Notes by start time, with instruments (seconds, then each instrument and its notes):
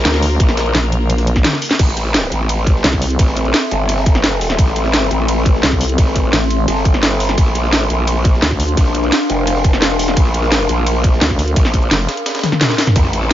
Already playing: string section A#3 F4 A#4
0.05 wobble bass D2, snare, closed hi-hat, ride
0.14 snare, ride
0.22 open hi-hat, ride
0.40 wobble bass A#1, kick, closed hi-hat, ride
0.49 snare
0.57 snare, closed hi-hat, ride
0.66 ride
0.75 wobble bass A#1, snare, closed hi-hat, ride
0.92 closed hi-hat, ride
1.10 closed hi-hat, ride
1.18 snare, closed hi-hat
1.27 closed hi-hat, ride
1.36 kick, snare
1.44 snare, closed hi-hat, high tom, ride
1.53 snare
1.62 open hi-hat, ride
1.71 snare, closed hi-hat
1.79 wobble bass A1, ambient pad C4, kick, closed hi-hat, ride, ride bell, crash
1.88 snare
1.97 snare, closed hi-hat, ride, ride bell
2.04 ambient pad A4, snare
2.14 snare, closed hi-hat, ride, ride bell
2.20 ambient pad C6, snare
2.32 wobble bass A1, closed hi-hat, ride, ride bell
2.49 closed hi-hat, ride, ride bell
2.63 ambient pad E5, kick, closed hi-hat, ride, ride bell
2.75 snare
2.84 wobble bass C2, snare, closed hi-hat, ride, ride bell
2.93 kick, snare
3.02 open hi-hat, ride, ride bell
3.10 closed hi-hat
3.19 wobble bass A1, kick, closed hi-hat, ride, ride bell
3.28 snare
3.37 closed hi-hat, ride, ride bell
3.45 ride
3.54 snare, closed hi-hat, ride, ride bell
3.71 wobble bass G1, closed hi-hat, ride, ride bell
3.89 closed hi-hat, ride, ride bell
3.98 snare
4.06 kick, closed hi-hat, ride, ride bell
4.15 snare
4.24 snare, closed hi-hat, ride, ride bell
4.32 snare
4.41 open hi-hat, ride, ride bell
4.50 snare, closed hi-hat
4.59 wobble bass A1, kick, closed hi-hat, ride, ride bell
4.67 snare
4.76 snare, closed hi-hat, ride, ride bell
4.85 snare
4.94 snare, closed hi-hat, ride, ride bell
5.02 snare
5.11 wobble bass A1, closed hi-hat, ride, ride bell
5.28 closed hi-hat, ride, ride bell
5.46 kick, closed hi-hat, ride, ride bell
5.55 snare
5.63 wobble bass C2, snare, closed hi-hat, ride, ride bell
5.72 kick, snare
5.81 open hi-hat, ride, ride bell
5.89 closed hi-hat
5.98 wobble bass A1, kick, closed hi-hat, ride, ride bell
6.07 snare
6.16 kick, closed hi-hat, ride, ride bell
6.33 wobble bass A1, snare, closed hi-hat, ride, ride bell
6.42 snare
6.50 closed hi-hat, ride, ride bell
6.68 wobble bass G1, closed hi-hat, ride, ride bell
6.77 snare
6.85 kick, closed hi-hat, ride, ride bell
6.94 snare
7.03 snare, closed hi-hat, ride, ride bell
7.12 snare
7.20 open hi-hat, ride, ride bell
7.29 snare, closed hi-hat
7.38 wobble bass A#1, ambient pad D4, kick, closed hi-hat, ride, ride bell
7.46 ambient pad A#4, snare
7.55 snare, closed hi-hat, ride, ride bell
7.64 snare
7.73 snare, closed hi-hat, ride, ride bell
7.81 snare
7.90 wobble bass A#1, closed hi-hat, ride, ride bell
8.07 closed hi-hat, ride, ride bell
8.22 ambient pad F5, kick, closed hi-hat, ride, ride bell
8.34 snare
8.42 wobble bass D2, snare, closed hi-hat, ride, ride bell
8.51 kick, snare
8.60 open hi-hat, ride, ride bell
8.69 closed hi-hat
8.77 wobble bass A#1, kick, closed hi-hat, ride, ride bell
8.86 snare
8.95 closed hi-hat, ride, ride bell
9.03 ride
9.12 snare, closed hi-hat, ride, ride bell
9.30 wobble bass F1, closed hi-hat, ride, ride bell
9.47 closed hi-hat, ride, ride bell
9.56 snare
9.64 kick, closed hi-hat, ride, ride bell
9.73 snare
9.82 snare, closed hi-hat, ride, ride bell
9.90 wobble bass E1
9.99 open hi-hat, ride, ride bell
10.08 snare, closed hi-hat
10.17 wobble bass A#1, kick, closed hi-hat, ride, ride bell
10.25 snare
10.34 snare, closed hi-hat, ride, ride bell
10.43 snare
10.52 snare, closed hi-hat, ride, ride bell
10.60 snare
10.69 wobble bass A#1, closed hi-hat, ride, ride bell
10.86 closed hi-hat, ride, ride bell
11.04 kick, closed hi-hat, ride, ride bell
11.13 snare
11.21 wobble bass D2, snare, closed hi-hat, ride, ride bell
11.30 kick, snare
11.39 open hi-hat, ride, ride bell
11.48 closed hi-hat
11.56 wobble bass A#1, kick, closed hi-hat, ride, ride bell
11.65 snare
11.74 kick, closed hi-hat, ride, ride bell
11.82 ride
11.91 wobble bass F1, snare, closed hi-hat, ride, ride bell
12.09 snare, closed hi-hat, ride, ride bell
12.17 closed hi-hat
12.26 snare, closed hi-hat, ride, ride bell
12.35 snare, closed hi-hat, ride
12.39 snare, ride
12.43 snare, closed hi-hat, high tom, ride, ride bell
12.52 snare, high tom
12.61 snare, closed hi-hat, mid tom, ride, ride bell
12.70 snare
12.78 snare, open hi-hat, ride, ride bell
12.87 snare, closed hi-hat, mid tom
12.96 wobble bass A1, string section A3 E4 A4, ambient pad C4, kick, closed hi-hat, ride, ride bell
13.05 ambient pad E5, snare
13.13 snare, closed hi-hat, ride, ride bell
13.22 snare